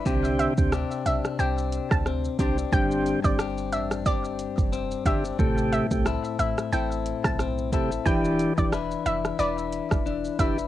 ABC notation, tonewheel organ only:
X:1
M:4/4
L:1/16
Q:"Swing 16ths" 1/4=90
K:Am
V:1 name="Tonewheel organ"
[D,CG]3 [D,CG] z8 z2 [D,CG] z | [D,CG]3 [D,CG] z8 z2 [D,CG] z | [C,A,G]3 [C,A,G] z8 z2 [C,A,G] z | [E,DG]3 [E,DG] z8 z2 [E,DG] z |]